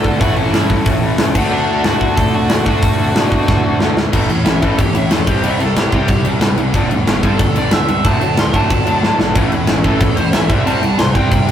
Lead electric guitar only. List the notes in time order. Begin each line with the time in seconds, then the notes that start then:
Already playing: A4 A5
0.20 F#4 F#5
0.35 E4 E5
1.51 D4 D5
1.85 F#4 F#5
2.17 A4 A5
2.34 F#4 F#5
2.68 F#4 F#5
4.45 E5
4.63 A4
4.79 G4
4.97 E5
5.12 A4
5.30 G4
5.46 E5
5.61 A4
5.79 G4
5.95 G4
7.24 A4
7.58 D5
7.72 E5
8.06 A5
8.39 C6
8.56 A5
9.85 A4
10.16 C5
10.33 E5
10.67 A5
10.99 C6
11.15 G5